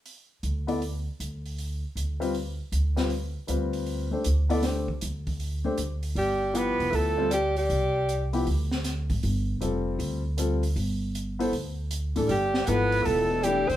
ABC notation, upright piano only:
X:1
M:4/4
L:1/8
Q:"Swing" 1/4=157
K:Gmix
V:1 name="Upright piano"
z3 [B,EAd] z4 | z3 [G,CFB] z3 [G,CFB] | z2 [G,CFB]3 [A,DGc] z [B,EAd] | [A,DGc] z4 [A,DGc] z2 |
z2 [F,B,EG]3 [G,CFc] z2 | z3 [F,B,EG] z4 | z2 [G,CFA]3 z [G,CFA] z | z3 [B,EAc] z3 [E,A,DA] |
z2 [F,B,EA]3 z [E,A,DE] z |]